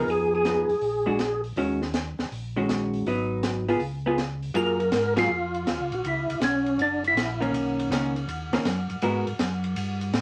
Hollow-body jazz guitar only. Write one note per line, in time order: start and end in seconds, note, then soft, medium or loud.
0.00 0.42 F3 medium
0.00 0.42 B3 medium
0.00 0.42 D#4 medium
0.00 0.42 G#4 medium
0.45 0.67 F3 soft
0.45 0.67 B3 soft
0.45 0.67 D#4 soft
0.45 0.68 G#4 soft
1.06 1.18 G#3 medium
1.06 1.18 D4 medium
1.06 1.18 F#4 medium
1.57 1.79 D#3 medium
1.57 1.79 G#3 medium
1.57 1.79 C#4 medium
1.57 1.80 F#4 medium
2.56 3.03 D#3 medium
2.56 3.04 G#3 medium
2.56 3.04 C#4 medium
2.56 3.04 F#4 medium
3.07 3.63 F#3 medium
3.07 3.64 B3 medium
3.07 3.64 D#4 medium
3.69 3.79 B3 medium
3.69 3.80 F4 medium
3.69 3.80 G#4 medium
4.06 4.17 B3 medium
4.06 4.17 F4 medium
4.06 4.18 G#4 medium
4.54 4.77 F#3 medium
4.54 4.77 A#3 medium
4.54 4.77 F4 medium
4.54 4.78 G#4 medium
5.16 5.28 F#3 medium
5.16 5.29 A#3 medium
5.16 5.29 F4 medium
5.16 5.29 G#4 medium
7.41 7.88 D#3 medium
7.41 7.88 A#3 medium
7.41 7.89 C#4 medium
7.91 8.13 D#3 medium
7.91 8.13 A#3 medium
7.91 8.14 C#4 medium
8.53 8.64 D#3 medium
8.53 8.64 A#3 medium
8.53 8.65 C#4 medium
9.03 9.25 G#3 medium
9.03 9.25 B3 medium
9.03 9.25 F#4 medium
9.03 9.25 A#4 medium